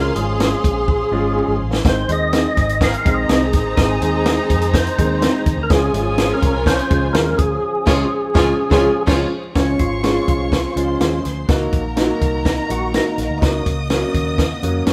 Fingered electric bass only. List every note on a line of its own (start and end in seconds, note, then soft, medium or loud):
0.00 0.10 C#2 loud
0.15 0.53 G#1 medium
0.64 1.01 A#1 medium
1.11 1.40 G#1 medium
1.48 1.58 G#1 medium
1.60 1.79 A1 medium
1.85 2.03 G#1 loud
2.08 2.46 D#2 medium
2.57 2.94 G#1 loud
3.05 3.24 A#1 medium
3.29 3.53 C2 medium
3.53 3.72 A1 medium
3.77 3.96 G#1 loud
4.00 4.38 D#2 medium
4.50 4.87 F2 medium
4.98 5.26 D#2 loud
5.46 5.55 D#2 medium
5.57 5.67 D2 medium
5.70 5.89 C#2 medium
5.93 6.31 G#1 medium
6.42 6.79 C2 medium
6.90 7.09 C#2 loud
7.14 7.33 D#2 loud
7.39 7.57 D2 medium
7.87 8.03 C#2 loud
8.35 8.51 C#2 loud
8.71 8.88 C#2 loud
9.07 9.24 C#2 loud
9.55 9.74 C#2 loud
9.79 10.17 G#1 medium
10.28 10.65 C2 medium
10.76 10.95 C#2 medium
11.01 11.19 D#2 medium
11.25 11.44 D2 medium
11.49 11.67 C#2 medium
11.72 12.10 A#1 medium
12.21 12.59 C2 medium
12.70 12.98 A#1 medium
13.18 13.27 A#1 medium
13.30 13.39 D2 medium
13.42 13.61 C#2 medium
13.66 14.03 C#2 medium
14.14 14.52 D#2 medium
14.63 14.81 F2 medium
14.86 14.93 F#2 medium